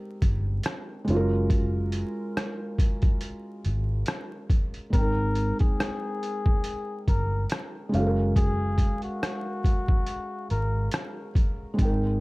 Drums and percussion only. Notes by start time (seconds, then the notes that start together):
0.22 kick, closed hi-hat
0.63 cross-stick, closed hi-hat
1.08 closed hi-hat
1.50 kick, closed hi-hat
1.92 closed hi-hat
2.37 cross-stick, closed hi-hat
2.79 kick, closed hi-hat
3.02 kick, closed hi-hat
3.21 closed hi-hat
3.65 closed hi-hat
4.06 cross-stick, closed hi-hat
4.50 kick, closed hi-hat
4.74 closed hi-hat
4.93 kick, closed hi-hat
5.35 closed hi-hat
5.59 kick, closed hi-hat
5.80 cross-stick, closed hi-hat
6.23 closed hi-hat
6.46 kick
6.64 closed hi-hat
7.08 kick, closed hi-hat
7.50 cross-stick, closed hi-hat
7.94 closed hi-hat
8.36 kick, closed hi-hat
8.78 kick, closed hi-hat
9.02 closed hi-hat
9.23 cross-stick, closed hi-hat
9.64 kick, closed hi-hat
9.88 kick
10.07 closed hi-hat
10.50 closed hi-hat
10.91 cross-stick, closed hi-hat
11.35 kick, closed hi-hat
11.79 kick, closed hi-hat